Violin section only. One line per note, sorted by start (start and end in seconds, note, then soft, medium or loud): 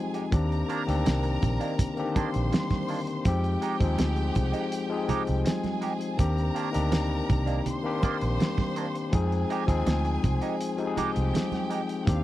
0.00 0.29 G#4 medium
0.00 0.29 G#5 medium
0.31 2.11 A#4 medium
0.31 2.11 A#5 medium
2.15 3.23 C5 medium
2.15 3.23 C6 medium
3.25 5.42 G4 medium
3.25 5.41 G5 medium
5.45 6.18 G#4 medium
5.45 6.18 G#5 medium
6.19 7.63 A#4 medium
6.19 7.63 A#5 loud
7.65 9.10 C5 medium
7.65 9.10 C6 loud
9.12 10.93 G#4 medium
9.12 10.93 G#5 loud
10.97 12.05 G4 medium
10.97 12.05 G5 medium
12.08 12.24 F4 medium
12.08 12.24 F5 loud